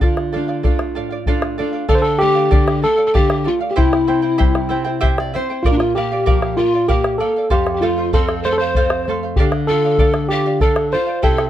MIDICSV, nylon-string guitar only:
0, 0, Header, 1, 2, 480
1, 0, Start_track
1, 0, Key_signature, -1, "minor"
1, 0, Tempo, 623053
1, 15, Time_signature, 6, 3, 24, 8
1, 8858, End_track
2, 0, Start_track
2, 0, Title_t, "Nylon-string guitar"
2, 0, Program_c, 0, 24
2, 33, Note_on_c, 0, 50, 57
2, 276, Note_on_c, 0, 57, 41
2, 280, Note_on_c, 0, 62, 39
2, 280, Note_on_c, 0, 65, 45
2, 494, Note_off_c, 0, 50, 0
2, 498, Note_off_c, 0, 57, 0
2, 503, Note_off_c, 0, 62, 0
2, 506, Note_off_c, 0, 65, 0
2, 507, Note_on_c, 0, 57, 46
2, 512, Note_on_c, 0, 62, 41
2, 516, Note_on_c, 0, 65, 47
2, 753, Note_on_c, 0, 45, 56
2, 890, Note_off_c, 0, 57, 0
2, 894, Note_off_c, 0, 62, 0
2, 896, Note_off_c, 0, 65, 0
2, 986, Note_on_c, 0, 57, 38
2, 991, Note_on_c, 0, 62, 39
2, 993, Note_on_c, 0, 65, 46
2, 1216, Note_off_c, 0, 45, 0
2, 1220, Note_off_c, 0, 57, 0
2, 1224, Note_off_c, 0, 62, 0
2, 1226, Note_off_c, 0, 65, 0
2, 1229, Note_on_c, 0, 57, 45
2, 1233, Note_on_c, 0, 62, 42
2, 1238, Note_on_c, 0, 65, 46
2, 1420, Note_off_c, 0, 57, 0
2, 1423, Note_off_c, 0, 62, 0
2, 1424, Note_off_c, 0, 65, 0
2, 1474, Note_on_c, 0, 50, 53
2, 1713, Note_on_c, 0, 57, 49
2, 1937, Note_off_c, 0, 50, 0
2, 1944, Note_off_c, 0, 57, 0
2, 1947, Note_on_c, 0, 50, 53
2, 2181, Note_off_c, 0, 50, 0
2, 2195, Note_on_c, 0, 57, 48
2, 2425, Note_off_c, 0, 57, 0
2, 2433, Note_on_c, 0, 50, 50
2, 2665, Note_off_c, 0, 50, 0
2, 2681, Note_on_c, 0, 57, 52
2, 2909, Note_off_c, 0, 57, 0
2, 2916, Note_on_c, 0, 48, 54
2, 3156, Note_on_c, 0, 60, 47
2, 3387, Note_off_c, 0, 60, 0
2, 3389, Note_on_c, 0, 55, 56
2, 3624, Note_off_c, 0, 55, 0
2, 3628, Note_on_c, 0, 60, 46
2, 3863, Note_off_c, 0, 60, 0
2, 3873, Note_off_c, 0, 48, 0
2, 3879, Note_on_c, 0, 76, 60
2, 3882, Note_on_c, 0, 48, 50
2, 3988, Note_off_c, 0, 76, 0
2, 4005, Note_on_c, 0, 74, 57
2, 4110, Note_off_c, 0, 48, 0
2, 4111, Note_off_c, 0, 74, 0
2, 4124, Note_on_c, 0, 60, 53
2, 4130, Note_on_c, 0, 72, 66
2, 4344, Note_off_c, 0, 72, 0
2, 4352, Note_off_c, 0, 60, 0
2, 4367, Note_on_c, 0, 46, 61
2, 4604, Note_on_c, 0, 58, 50
2, 4831, Note_off_c, 0, 58, 0
2, 4854, Note_on_c, 0, 53, 57
2, 5076, Note_off_c, 0, 53, 0
2, 5085, Note_on_c, 0, 58, 46
2, 5311, Note_off_c, 0, 58, 0
2, 5313, Note_off_c, 0, 46, 0
2, 5322, Note_on_c, 0, 46, 53
2, 5549, Note_off_c, 0, 46, 0
2, 5564, Note_on_c, 0, 58, 50
2, 5790, Note_off_c, 0, 58, 0
2, 5798, Note_on_c, 0, 41, 61
2, 6032, Note_on_c, 0, 57, 51
2, 6263, Note_off_c, 0, 57, 0
2, 6279, Note_on_c, 0, 60, 58
2, 6506, Note_off_c, 0, 60, 0
2, 6516, Note_on_c, 0, 57, 47
2, 6744, Note_off_c, 0, 57, 0
2, 6766, Note_on_c, 0, 60, 52
2, 6989, Note_off_c, 0, 60, 0
2, 6994, Note_on_c, 0, 57, 47
2, 7198, Note_off_c, 0, 41, 0
2, 7222, Note_off_c, 0, 57, 0
2, 7242, Note_on_c, 0, 50, 61
2, 7478, Note_on_c, 0, 65, 49
2, 7702, Note_off_c, 0, 65, 0
2, 7710, Note_on_c, 0, 57, 55
2, 7938, Note_off_c, 0, 57, 0
2, 7950, Note_on_c, 0, 65, 51
2, 8177, Note_off_c, 0, 65, 0
2, 8193, Note_off_c, 0, 50, 0
2, 8202, Note_on_c, 0, 50, 54
2, 8422, Note_off_c, 0, 50, 0
2, 8434, Note_on_c, 0, 65, 52
2, 8657, Note_off_c, 0, 65, 0
2, 8680, Note_on_c, 0, 48, 54
2, 8858, Note_off_c, 0, 48, 0
2, 8858, End_track
0, 0, End_of_file